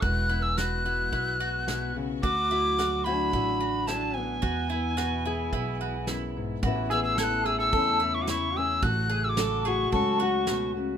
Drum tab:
SD |--o---o-|--o---o-|--o---o-|--o---o-|
BD |o---o---|o---o---|o---o---|o---o---|

SD |--o---o-|
BD |o---o---|